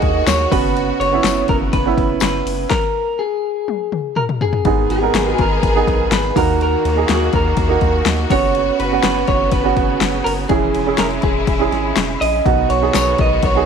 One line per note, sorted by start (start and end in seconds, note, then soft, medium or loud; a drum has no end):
0.00 0.23 D#2 medium
0.00 0.49 D#3 medium
0.00 0.53 D#3 medium
0.00 0.49 A#3 medium
0.00 0.53 A#3 medium
0.00 0.53 D#4 medium
0.00 0.53 F#4 medium
0.00 2.66 F#4 medium
0.00 0.52 G#4 medium
0.00 0.24 D#5 medium
0.00 kick medium
0.00 ride soft
0.27 0.47 D#2 loud
0.27 0.51 C#5 medium
0.27 snare loud
0.27 ride medium
0.27 tambourine medium
0.51 0.92 F#1 medium
0.51 2.69 C#3 medium
0.51 1.02 B3 medium
0.51 2.69 B3 medium
0.51 1.02 C#4 medium
0.51 1.03 F#4 medium
0.51 1.00 B4 loud
0.51 kick loud
0.51 open hi-hat medium
0.51 ride medium
0.77 ride medium
1.00 1.20 F#1 loud
1.00 1.49 C#5 loud
1.00 ride medium
1.12 1.73 B3 medium
1.12 1.73 C#4 medium
1.12 1.74 E4 medium
1.24 1.44 F#1 loud
1.24 snare loud
1.24 ride medium
1.24 tambourine medium
1.48 1.69 F#1 loud
1.48 1.56 A#4 medium
1.48 kick loud
1.48 ride medium
1.73 1.93 F#1 loud
1.73 2.18 B4 medium
1.73 kick medium
1.73 ride medium
1.86 2.56 B3 medium
1.86 2.57 C#4 medium
1.86 2.57 E4 medium
1.98 2.18 F#1 medium
1.98 kick medium
1.98 ride medium
2.20 2.42 F#1 loud
2.20 2.67 B4 medium
2.20 snare loud
2.20 ride loud
2.20 tambourine medium
2.46 2.66 F#1 medium
2.46 open hi-hat medium
2.46 ride medium
2.70 3.20 A#4 loud
2.70 kick loud
2.70 snare medium
3.19 4.37 G#4 medium
3.68 high tom medium
3.92 mid tom medium
4.16 4.23 A#4 medium
4.16 mid tom medium
4.29 mid tom medium
4.41 4.90 G#4 loud
4.41 floor tom loud
4.53 floor tom medium
4.64 4.86 G#1 loud
4.64 5.35 G#2 medium
4.64 6.34 D#3 medium
4.64 6.34 B3 medium
4.64 4.96 B3 medium
4.64 4.96 D#4 medium
4.64 6.34 G#4 loud
4.64 4.97 G#4 medium
4.64 kick loud
4.64 ride medium
4.89 5.09 G#1 loud
4.89 5.41 G#4 loud
4.89 ride medium
5.01 5.63 B3 medium
5.01 5.63 D#4 medium
5.01 5.64 A#4 medium
5.14 5.34 G#1 medium
5.14 snare loud
5.14 ride medium
5.38 5.59 G#1 medium
5.38 6.13 A#4 loud
5.38 kick loud
5.38 ride medium
5.63 5.83 G#1 loud
5.63 kick loud
5.63 ride medium
5.75 6.36 B3 medium
5.75 6.34 D#4 medium
5.75 6.37 G#4 medium
5.87 6.08 B1 medium
5.87 kick medium
5.87 ride soft
6.11 6.31 G#1 loud
6.11 6.35 B4 loud
6.11 snare loud
6.11 ride medium
6.35 6.76 D#2 loud
6.35 7.05 D#3 medium
6.35 8.29 D#3 medium
6.35 6.86 A#3 medium
6.35 8.29 A#3 medium
6.35 6.87 D#4 medium
6.35 10.47 F#4 medium
6.35 6.87 F#4 medium
6.35 6.59 A#4 loud
6.35 kick loud
6.35 open hi-hat medium
6.35 ride medium
6.61 7.12 A#4 loud
6.61 ride medium
6.85 7.05 D#2 loud
6.85 ride medium
6.96 7.57 A#3 medium
6.96 7.58 D#4 medium
6.96 7.58 G#4 medium
7.09 7.29 D#2 medium
7.09 7.35 F#4 medium
7.09 snare loud
7.09 ride medium
7.33 7.54 D#2 loud
7.33 8.04 A#4 medium
7.33 kick loud
7.33 ride medium
7.57 7.78 D#2 loud
7.57 kick medium
7.57 ride medium
7.69 8.30 A#3 medium
7.69 8.31 D#4 medium
7.69 8.30 F#4 medium
7.81 8.02 D#2 medium
7.81 kick medium
7.81 ride soft
8.05 8.26 D#2 loud
8.05 snare loud
8.05 ride medium
8.30 8.71 F#1 medium
8.30 12.42 C#3 medium
8.30 8.81 B3 medium
8.30 10.48 B3 medium
8.30 8.82 C#4 medium
8.30 8.82 F#4 loud
8.30 8.77 C#5 loud
8.30 kick loud
8.30 open hi-hat medium
8.30 ride medium
8.55 ride medium
8.80 9.00 F#1 loud
8.80 9.03 B4 loud
8.80 ride medium
8.92 9.53 B3 medium
8.92 9.53 C#4 medium
8.92 9.53 F#4 medium
9.03 9.24 F#1 loud
9.03 9.28 B4 loud
9.03 snare loud
9.03 ride medium
9.28 9.48 F#1 loud
9.28 9.52 C#5 loud
9.28 kick loud
9.28 ride soft
9.52 9.73 F#1 loud
9.52 10.24 B4 medium
9.52 kick medium
9.52 ride medium
9.64 10.36 B3 medium
9.64 10.36 C#4 medium
9.64 10.36 F#4 medium
9.77 9.97 F#1 medium
9.77 kick medium
9.77 ride medium
10.01 10.21 F#1 loud
10.01 snare loud
10.01 ride medium
10.24 10.46 F#1 medium
10.24 10.31 A#4 loud
10.24 open hi-hat medium
10.24 ride medium
10.49 10.70 E1 loud
10.49 11.20 E3 medium
10.49 12.43 G#3 medium
10.49 10.80 C#4 medium
10.49 12.43 E4 medium
10.49 10.81 E4 medium
10.49 11.00 G#4 loud
10.49 10.81 G#4 medium
10.49 kick loud
10.49 ride medium
10.74 10.95 E1 loud
10.74 ride medium
10.87 11.48 C#4 medium
10.87 11.48 E4 medium
10.87 11.48 G#4 medium
10.98 11.19 E1 loud
10.98 11.05 A#4 loud
10.98 snare loud
10.98 ride medium
11.11 ride soft
11.22 11.44 E1 loud
11.22 11.69 G#4 medium
11.22 kick loud
11.22 ride medium
11.47 11.68 E1 loud
11.47 kick loud
11.47 ride medium
11.59 12.31 C#4 medium
11.59 12.31 E4 medium
11.59 12.32 G#4 medium
11.72 11.92 G#1 loud
11.72 snare soft
11.72 ride soft
11.96 12.17 E1 loud
11.96 snare loud
11.96 ride medium
12.21 12.41 A#1 medium
12.21 12.67 D#5 loud
12.21 open hi-hat medium
12.21 ride medium
12.45 12.66 B1 loud
12.45 13.15 B2 medium
12.45 13.66 D#3 medium
12.45 12.76 B3 medium
12.45 13.66 B3 medium
12.45 12.76 D#4 medium
12.45 13.66 F#4 loud
12.45 12.77 F#4 medium
12.45 kick loud
12.45 ride medium
12.70 12.90 B1 loud
12.70 12.95 C#5 medium
12.70 ride medium
12.82 13.43 B3 medium
12.82 13.43 D#4 medium
12.82 13.43 G#4 medium
12.94 13.15 B1 loud
12.94 13.20 C#5 loud
12.94 snare loud
12.94 ride medium
12.94 tambourine loud
13.18 13.39 B1 loud
13.18 13.43 D#5 loud
13.18 kick loud
13.18 ride medium
13.43 13.63 B1 loud
13.43 13.66 C#5 loud
13.43 kick medium
13.43 ride medium
13.55 13.66 B3 medium
13.55 13.66 D#4 medium
13.55 13.66 G#4 medium